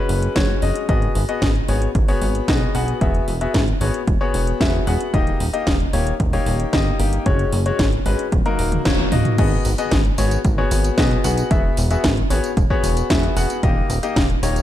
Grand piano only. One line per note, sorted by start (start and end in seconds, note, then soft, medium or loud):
0.00 0.33 G#3 loud
0.00 0.33 C#4 medium
0.00 0.33 F#4 medium
0.00 0.33 B4 loud
0.36 0.59 G#3 medium
0.36 0.59 C#4 medium
0.36 0.59 F#4 medium
0.36 0.59 C#5 medium
0.62 0.85 G#3 medium
0.62 0.85 C#4 medium
0.62 0.85 F#4 medium
0.62 0.85 D#5 medium
0.89 1.19 B3 medium
0.89 1.19 F#4 medium
0.89 1.19 G#4 medium
0.89 1.19 D#5 medium
1.29 1.48 B3 medium
1.29 1.48 F#4 medium
1.29 1.48 G#4 medium
1.29 1.48 D#5 medium
1.69 1.88 B3 medium
1.69 1.88 F#4 medium
1.69 1.88 G#4 medium
1.69 1.88 C#5 medium
2.08 2.45 B3 loud
2.08 2.45 F#4 medium
2.08 2.45 G#4 medium
2.08 2.45 C#5 loud
2.48 2.72 B3 medium
2.48 2.72 F#4 medium
2.48 2.72 G#4 medium
2.48 2.72 D#5 medium
2.75 2.97 B3 medium
2.75 2.97 F#4 medium
2.75 2.97 G#4 medium
2.75 2.97 F#5 medium
3.01 3.32 B3 medium
3.01 3.32 F#4 medium
3.01 3.32 G#4 medium
3.01 3.32 E5 medium
3.41 3.60 B3 medium
3.41 3.60 F#4 medium
3.41 3.60 G#4 medium
3.41 3.60 E5 medium
3.81 4.00 B3 medium
3.81 4.00 F#4 medium
3.81 4.00 G#4 medium
3.81 4.00 C#5 medium
4.21 4.57 B3 loud
4.21 4.57 F#4 medium
4.21 4.57 G#4 medium
4.21 4.57 C#5 loud
4.61 4.84 B3 medium
4.61 4.84 F#4 medium
4.61 4.84 G#4 medium
4.61 4.84 E5 medium
4.87 5.10 B3 medium
4.87 5.10 F#4 medium
4.87 5.10 G#4 medium
4.87 5.10 F#5 medium
5.14 5.44 A#3 medium
5.14 5.44 D#4 medium
5.14 5.44 G4 medium
5.14 5.44 D#5 loud
5.53 5.73 A#3 medium
5.53 5.73 D#4 medium
5.53 5.73 G4 medium
5.53 5.73 D#5 loud
5.93 6.12 A#3 medium
5.93 6.12 D#4 medium
5.93 6.12 G4 medium
5.93 6.12 C#5 loud
6.33 6.70 A#3 loud
6.33 6.70 D#4 medium
6.33 6.70 G4 medium
6.33 6.70 C#5 loud
6.73 6.96 A#3 medium
6.73 6.96 D#4 medium
6.73 6.96 G4 medium
6.73 6.96 D#5 medium
6.99 7.22 A#3 medium
6.99 7.22 D#4 medium
6.99 7.22 G4 medium
6.99 7.22 G5 loud
7.26 7.57 G#3 medium
7.26 7.57 C#4 medium
7.26 7.57 F#4 medium
7.26 7.57 C#5 loud
7.66 7.85 G#3 medium
7.66 7.85 C#4 medium
7.66 7.85 F#4 medium
7.66 7.85 C#5 loud
8.06 8.25 G#3 medium
8.06 8.25 C#4 medium
8.06 8.25 F#4 medium
8.06 8.25 B4 medium
8.46 8.82 A#3 medium
8.46 8.82 D#4 medium
8.46 8.82 F#4 medium
8.46 8.82 A#4 loud
8.85 9.09 A#3 medium
8.85 9.09 D#4 medium
8.85 9.09 F#4 medium
8.85 9.09 C#5 medium
9.12 9.34 A#3 medium
9.12 9.35 D#4 medium
9.12 9.34 F#4 medium
9.12 9.35 D#5 loud
9.39 9.69 B3 medium
9.39 9.69 F#4 medium
9.39 9.69 G#4 medium
9.39 9.69 D#5 loud
9.78 9.97 B3 medium
9.78 9.97 F#4 medium
9.78 9.97 G#4 medium
9.78 9.97 D#5 loud
10.18 10.37 B3 medium
10.18 10.37 F#4 medium
10.18 10.37 G#4 medium
10.18 10.37 C#5 loud
10.58 10.95 B3 loud
10.58 10.95 F#4 medium
10.58 10.95 G#4 medium
10.58 10.95 C#5 loud
10.98 11.21 B3 medium
10.98 11.21 F#4 medium
10.98 11.21 G#4 medium
10.98 11.21 D#5 medium
11.24 11.47 B3 medium
11.24 11.47 F#4 medium
11.24 11.47 G#4 medium
11.24 11.47 F#5 loud
11.51 11.81 B3 medium
11.51 11.81 F#4 medium
11.51 11.81 G#4 medium
11.51 11.81 E5 loud
11.91 12.10 B3 medium
11.91 12.10 F#4 medium
11.91 12.10 G#4 medium
11.91 12.10 E5 loud
12.30 12.50 B3 medium
12.30 12.50 F#4 medium
12.30 12.50 G#4 medium
12.30 12.50 C#5 loud
12.70 13.07 B3 loud
12.70 13.07 F#4 loud
12.70 13.07 G#4 loud
12.70 13.07 C#5 loud
13.10 13.34 B3 medium
13.10 13.34 F#4 medium
13.10 13.34 G#4 medium
13.10 13.34 E5 medium
13.37 13.59 B3 medium
13.37 13.59 F#4 medium
13.37 13.59 G#4 medium
13.37 13.59 F#5 loud
13.63 13.94 A#3 medium
13.63 13.94 D#4 medium
13.63 13.94 G4 medium
13.63 13.94 D#5 loud
14.03 14.22 A#3 loud
14.03 14.22 D#4 medium
14.03 14.22 G4 medium
14.03 14.22 D#5 loud
14.43 14.62 A#3 medium
14.43 14.62 D#4 medium
14.43 14.62 G4 medium
14.43 14.62 C#5 loud